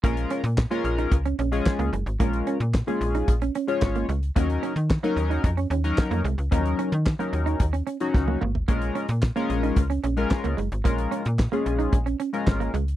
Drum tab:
HH |xxxx-xxxxxxx-xxx|xxxx-xxxxxxx-xxx|xxxx-xxxxxxx-xxx|xxxx-xxxxxxx----|
CP |----x-------x---|----x-------x---|----x-------x---|----x-----------|
SD |----o-------o---|----o-------o---|----o-------o---|----o-------o---|
T1 |----------------|----------------|----------------|-------------o--|
T2 |----------------|----------------|----------------|--------------o-|
FT |----------------|----------------|----------------|---------------o|
BD |o---o---o---o---|o---o---o---o---|o---o---o---o---|o---o---o---o---|

HH |xxxx-xxxxxxx-xxx|xxxx-xxxxxxx-xxx|
CP |----x-------x---|----x-------x---|
SD |----o-------o---|----o-------o---|
T1 |----------------|----------------|
T2 |----------------|----------------|
FT |----------------|----------------|
BD |o---o---o---o---|o---o---o---o---|